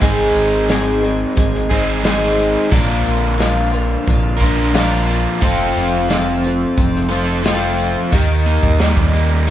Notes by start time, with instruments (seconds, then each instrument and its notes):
0.01 fingered electric bass G#1, twelve-string acoustic guitar G#2 D#3 G#3 C4 D#4 G#4, kick, closed hi-hat
0.35 fingered electric bass G#1, closed hi-hat
0.68 twelve-string acoustic guitar G#2 D#3 G#3 C4 D#4 G#4, snare, closed hi-hat
1.01 twelve-string acoustic guitar G#3 C4 D#4 G#4, closed hi-hat
1.35 fingered electric bass G#1, twelve-string acoustic guitar G#3 C4 D#4 G#4, kick, closed hi-hat
1.54 snare
1.70 twelve-string acoustic guitar G#3 C4 D#4 G#4, kick, closed hi-hat
2.04 twelve-string acoustic guitar G#2 D#3 G#3 C4 D#4 G#4, snare, closed hi-hat
2.38 closed hi-hat
2.70 fingered electric bass A#1, twelve-string acoustic guitar A#2 F3 A#3 D4 F4, overdriven electric guitar D3 A#4, kick, closed hi-hat
3.06 fingered electric bass A#1, closed hi-hat
3.38 twelve-string acoustic guitar A#2 F3 A#3 D4 F4, snare, closed hi-hat
3.72 twelve-string acoustic guitar A#3 D4 F4, closed hi-hat
4.06 fingered electric bass A#1, twelve-string acoustic guitar F3 A#3 D4 F4, kick, closed hi-hat
4.37 overdriven electric guitar A#2 D3 F3 A#3 A#4, twelve-string acoustic guitar F4, kick, closed hi-hat
4.42 twelve-string acoustic guitar A#3 D4
4.73 twelve-string acoustic guitar A#2 F3 A#3 D4 F4, overdriven electric guitar D3 A#4, snare, closed hi-hat
5.08 closed hi-hat
5.41 fingered electric bass F1, twelve-string acoustic guitar F2 C3 F3 A3 C4 F4, overdriven electric guitar A4, kick, closed hi-hat
5.75 fingered electric bass F1, closed hi-hat
6.08 twelve-string acoustic guitar F2 C3 F3 A3 C4 F4, snare, closed hi-hat
6.44 twelve-string acoustic guitar F3 A3 C4 F4, closed hi-hat
6.77 fingered electric bass F1, twelve-string acoustic guitar F3 A3 C4 F4, kick, closed hi-hat
6.96 snare
7.09 twelve-string acoustic guitar F3 A3 C4 F4, overdriven electric guitar A4, closed hi-hat
7.45 twelve-string acoustic guitar F2 C3 F3 A3 C4 F4, overdriven electric guitar A4, snare, closed hi-hat
7.80 closed hi-hat
8.10 fingered electric bass D#2, twelve-string acoustic guitar D#3 A#3 D#4 G4, tonewheel organ G4 A#4 D#5 A#5, kick, crash
8.46 overdriven electric guitar A#3, closed hi-hat
8.63 fingered electric bass D#2, kick
8.78 twelve-string acoustic guitar D#3 A#3 D#4 G4, overdriven electric guitar G3, snare, closed hi-hat
8.97 fingered electric bass D#2, kick
9.14 overdriven electric guitar A#3, closed hi-hat
9.47 twelve-string acoustic guitar D#3 A#3, overdriven electric guitar G3